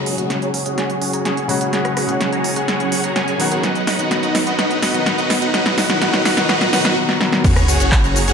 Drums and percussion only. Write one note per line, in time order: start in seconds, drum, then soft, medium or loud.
0.06 open hi-hat medium
0.18 closed hi-hat medium
0.30 snare soft
0.30 closed hi-hat medium
0.42 closed hi-hat soft
0.54 open hi-hat loud
0.66 closed hi-hat medium
0.78 snare soft
0.78 closed hi-hat medium
0.90 closed hi-hat soft
1.02 open hi-hat loud
1.13 closed hi-hat medium
1.25 snare medium
1.25 closed hi-hat medium
1.37 closed hi-hat soft
1.49 open hi-hat loud
1.61 closed hi-hat medium
1.73 snare medium
1.73 closed hi-hat soft
1.85 cross-stick medium
1.85 closed hi-hat soft
1.97 cross-stick medium
1.97 open hi-hat loud
2.09 closed hi-hat medium
2.21 snare medium
2.21 closed hi-hat soft
2.33 closed hi-hat soft
2.44 open hi-hat loud
2.56 closed hi-hat medium
2.68 snare medium
2.68 closed hi-hat medium
2.80 closed hi-hat soft
2.92 open hi-hat loud
3.04 closed hi-hat medium
3.16 snare medium
3.16 closed hi-hat medium
3.28 closed hi-hat soft
3.40 open hi-hat loud
3.52 closed hi-hat medium
3.63 snare medium
3.63 closed hi-hat soft
3.75 closed hi-hat soft
3.87 snare medium
3.87 open hi-hat loud
3.99 closed hi-hat medium
4.11 snare medium
4.11 closed hi-hat medium
4.23 closed hi-hat soft
4.35 snare medium
4.35 open hi-hat loud
4.47 closed hi-hat medium
4.59 snare medium
4.59 closed hi-hat soft
4.71 closed hi-hat soft
4.83 snare medium
4.83 open hi-hat loud
4.94 closed hi-hat medium
5.06 snare medium
5.06 closed hi-hat medium
5.18 closed hi-hat soft
5.30 snare medium
5.30 open hi-hat loud
5.42 closed hi-hat medium
5.54 snare medium
5.54 closed hi-hat soft
5.66 snare medium
5.66 closed hi-hat soft
5.78 snare medium
5.78 open hi-hat loud
5.90 snare medium
5.90 closed hi-hat soft
6.02 snare loud
6.02 closed hi-hat medium
6.13 snare medium
6.13 closed hi-hat soft
6.25 snare loud
6.25 open hi-hat loud
6.37 snare medium
6.37 closed hi-hat soft
6.49 snare loud
6.49 closed hi-hat soft
6.61 snare medium
6.61 closed hi-hat soft
6.73 snare loud
6.73 open hi-hat loud
6.85 snare loud
6.85 closed hi-hat medium
7.09 snare medium
7.21 snare medium
7.33 snare medium
7.44 kick loud
7.44 closed hi-hat medium
7.44 crash loud
7.44 shaker soft
7.56 cross-stick medium
7.56 closed hi-hat soft
7.56 shaker soft
7.68 open hi-hat loud
7.68 shaker medium
7.80 closed hi-hat medium
7.80 shaker soft
7.92 kick loud
7.92 clap loud
7.92 closed hi-hat medium
7.92 shaker soft
8.04 closed hi-hat soft
8.04 shaker soft
8.16 open hi-hat loud
8.16 shaker medium
8.28 closed hi-hat medium
8.28 shaker soft